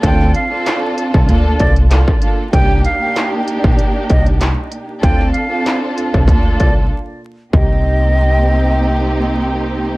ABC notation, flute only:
X:1
M:4/4
L:1/16
Q:"Swing 16ths" 1/4=96
K:Cdor
V:1 name="Flute"
g2 f3 z4 z d z4 z | g2 f3 z4 z e z4 z | g2 f3 z4 z d z4 z | e12 z4 |]